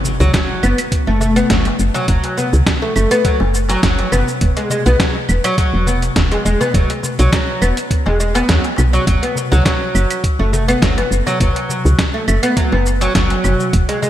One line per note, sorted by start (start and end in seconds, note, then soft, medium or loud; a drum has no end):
0.00 impact medium
0.00 darbuka dum medium
0.05 shaker medium
0.20 0.29 C#2 medium
0.20 0.32 F#3 medium
0.20 shaker soft
0.34 0.61 F#3 medium
0.34 kick loud
0.34 snare loud
0.34 closed hi-hat medium
0.34 shaker soft
0.63 0.74 F#1 loud
0.63 0.78 B3 medium
0.63 claves medium
0.63 shaker medium
0.78 closed hi-hat soft
0.78 claves medium
0.78 shaker soft
0.92 kick loud
0.92 closed hi-hat medium
0.92 shaker soft
1.07 1.43 F#1 loud
1.07 1.20 A3 medium
1.20 1.36 A3 medium
1.20 darbuka dum medium
1.20 shaker medium
1.36 1.49 B3 loud
1.36 closed hi-hat soft
1.36 darbuka ka medium
1.36 shaker soft
1.50 1.71 F#1 loud
1.50 1.65 F#3 medium
1.50 kick loud
1.50 snare loud
1.50 closed hi-hat medium
1.50 shaker soft
1.65 closed hi-hat soft
1.65 darbuka ka soft
1.65 darbuka tek medium
1.79 1.90 F#1 medium
1.79 shaker medium
1.94 2.07 F#3 medium
1.94 darbuka tek medium
1.94 darbuka dum medium
1.94 shaker soft
2.08 2.19 F#1 loud
2.08 2.36 F#3 medium
2.08 kick loud
2.08 closed hi-hat medium
2.08 shaker soft
2.24 closed hi-hat soft
2.24 darbuka ka soft
2.24 darbuka tek medium
2.38 2.52 B3 medium
2.38 darbuka dum loud
2.38 shaker medium
2.53 2.62 C#2 medium
2.53 shaker soft
2.67 kick loud
2.67 snare loud
2.67 closed hi-hat medium
2.67 shaker soft
2.82 2.95 A3 medium
2.96 3.07 F#1 loud
2.96 3.10 A3 medium
2.96 claves medium
2.96 shaker medium
3.11 3.24 B3 loud
3.11 closed hi-hat soft
3.11 shaker soft
3.25 3.40 F#3 medium
3.25 kick loud
3.25 closed hi-hat medium
3.25 shaker soft
3.40 3.76 F#1 loud
3.40 darbuka tek medium
3.54 darbuka ka medium
3.54 shaker medium
3.69 3.82 F#3 loud
3.69 closed hi-hat soft
3.69 darbuka tek medium
3.69 shaker soft
3.83 4.04 F#1 loud
3.83 4.11 F#3 medium
3.83 kick loud
3.83 snare loud
3.83 closed hi-hat medium
3.83 shaker soft
3.99 closed hi-hat soft
3.99 darbuka tek medium
4.12 4.23 F#1 medium
4.12 4.27 B3 medium
4.12 darbuka tek medium
4.12 darbuka dum medium
4.12 claves medium
4.12 shaker medium
4.27 darbuka ka medium
4.27 shaker soft
4.41 4.52 E1 loud
4.41 kick loud
4.41 closed hi-hat medium
4.41 shaker soft
4.56 4.69 G#3 medium
4.56 closed hi-hat soft
4.56 darbuka ka soft
4.56 darbuka tek medium
4.70 4.85 G#3 medium
4.70 darbuka dum loud
4.70 shaker medium
4.86 4.95 B1 medium
4.86 4.99 B3 loud
4.86 shaker soft
5.00 5.14 F#3 medium
5.00 kick loud
5.00 snare loud
5.00 closed hi-hat medium
5.00 shaker soft
5.29 5.39 E1 loud
5.29 claves medium
5.29 shaker medium
5.44 5.57 F#3 loud
5.44 closed hi-hat soft
5.44 claves medium
5.44 shaker soft
5.58 5.86 F#3 medium
5.58 kick loud
5.58 closed hi-hat medium
5.58 shaker soft
5.73 6.09 E1 loud
5.86 6.02 B3 medium
5.86 darbuka dum medium
5.86 shaker medium
6.02 closed hi-hat soft
6.02 darbuka ka medium
6.02 shaker soft
6.16 6.37 E1 loud
6.16 kick loud
6.16 snare loud
6.16 closed hi-hat medium
6.16 shaker soft
6.31 6.44 G#3 medium
6.31 closed hi-hat soft
6.31 darbuka ka soft
6.31 darbuka tek medium
6.45 6.56 E1 medium
6.45 6.60 G#3 medium
6.45 shaker medium
6.61 6.74 B3 medium
6.61 darbuka tek medium
6.61 darbuka dum medium
6.61 shaker soft
6.74 6.85 E1 loud
6.74 6.89 F#3 medium
6.74 kick loud
6.74 closed hi-hat medium
6.74 shaker soft
6.89 closed hi-hat soft
6.89 darbuka ka soft
6.89 darbuka tek medium
7.03 darbuka dum loud
7.03 shaker medium
7.19 7.28 B1 medium
7.19 7.32 F#3 loud
7.19 closed hi-hat soft
7.19 shaker soft
7.32 7.60 F#3 medium
7.32 kick loud
7.32 snare loud
7.32 closed hi-hat medium
7.32 shaker soft
7.62 7.72 E1 loud
7.62 7.76 B3 medium
7.62 claves medium
7.62 shaker medium
7.77 closed hi-hat soft
7.77 shaker soft
7.91 kick loud
7.91 closed hi-hat medium
7.91 shaker soft
8.06 8.42 E1 loud
8.06 8.19 G#3 medium
8.06 darbuka ka soft
8.06 darbuka tek medium
8.20 8.35 G#3 medium
8.20 darbuka ka soft
8.20 shaker medium
8.35 8.48 B3 loud
8.35 closed hi-hat soft
8.35 darbuka tek medium
8.35 shaker soft
8.49 8.60 E2 medium
8.49 8.64 F#3 medium
8.49 kick loud
8.49 snare loud
8.49 closed hi-hat medium
8.49 shaker soft
8.64 closed hi-hat soft
8.64 darbuka tek medium
8.77 8.99 B1 loud
8.77 darbuka tek medium
8.77 darbuka dum medium
8.77 claves medium
8.77 shaker medium
8.92 9.06 F#3 medium
8.92 darbuka ka soft
8.92 shaker soft
9.07 9.18 F#1 loud
9.07 9.22 F#3 medium
9.07 kick loud
9.07 closed hi-hat medium
9.07 shaker soft
9.23 9.36 B3 medium
9.23 closed hi-hat soft
9.23 darbuka ka soft
9.23 darbuka tek medium
9.35 darbuka dum loud
9.35 shaker medium
9.52 9.61 C#2 medium
9.52 9.64 F#3 loud
9.52 shaker soft
9.65 10.22 F#3 medium
9.65 kick loud
9.65 snare medium
9.65 closed hi-hat medium
9.65 shaker soft
9.95 10.05 F#1 loud
9.95 claves medium
9.95 shaker medium
10.10 closed hi-hat soft
10.10 claves medium
10.10 shaker soft
10.24 kick loud
10.24 closed hi-hat medium
10.24 shaker soft
10.39 10.75 F#1 loud
10.39 10.52 A3 medium
10.53 10.68 A3 medium
10.53 darbuka dum medium
10.53 shaker medium
10.68 10.81 B3 loud
10.68 closed hi-hat soft
10.68 darbuka ka soft
10.68 shaker soft
10.82 11.03 F#1 loud
10.82 10.97 F#3 medium
10.82 kick loud
10.82 snare loud
10.82 closed hi-hat medium
10.82 shaker soft
10.98 11.11 B3 medium
10.98 closed hi-hat soft
10.98 darbuka ka soft
10.98 darbuka tek medium
11.11 11.22 F#1 medium
11.11 shaker medium
11.26 11.39 F#3 loud
11.26 darbuka tek medium
11.26 darbuka dum loud
11.26 shaker soft
11.40 11.51 F#1 loud
11.40 11.97 F#3 medium
11.40 kick loud
11.40 closed hi-hat medium
11.40 shaker soft
11.55 closed hi-hat soft
11.55 darbuka ka soft
11.55 darbuka tek medium
11.69 darbuka dum medium
11.69 shaker medium
11.85 11.94 C#2 loud
11.85 shaker soft
11.99 kick loud
11.99 snare medium
11.99 closed hi-hat medium
11.99 shaker soft
12.14 12.27 A3 medium
12.28 12.38 F#1 loud
12.28 12.43 A3 medium
12.28 claves medium
12.28 shaker medium
12.43 12.56 B3 loud
12.43 closed hi-hat soft
12.43 shaker soft
12.57 12.72 F#3 medium
12.57 kick loud
12.57 closed hi-hat medium
12.57 shaker soft
12.72 13.08 F#1 loud
12.72 12.85 B3 medium
12.72 darbuka tek medium
12.86 darbuka ka medium
12.86 shaker medium
13.01 13.14 F#3 loud
13.01 closed hi-hat soft
13.01 darbuka tek medium
13.01 shaker soft
13.15 13.36 F#1 loud
13.15 13.72 F#3 medium
13.15 kick loud
13.15 snare medium
13.15 closed hi-hat medium
13.15 shaker soft
13.30 closed hi-hat soft
13.30 darbuka tek medium
13.44 13.55 F#1 medium
13.44 darbuka tek medium
13.44 darbuka dum medium
13.44 claves medium
13.44 shaker medium
13.59 darbuka ka soft
13.59 shaker soft
13.73 13.84 E1 loud
13.73 kick loud
13.73 closed hi-hat medium
13.73 shaker soft
13.88 14.01 G#3 medium
13.88 closed hi-hat soft
13.88 darbuka ka soft
13.88 darbuka tek medium
14.02 14.10 G#3 medium
14.02 darbuka dum loud
14.02 shaker medium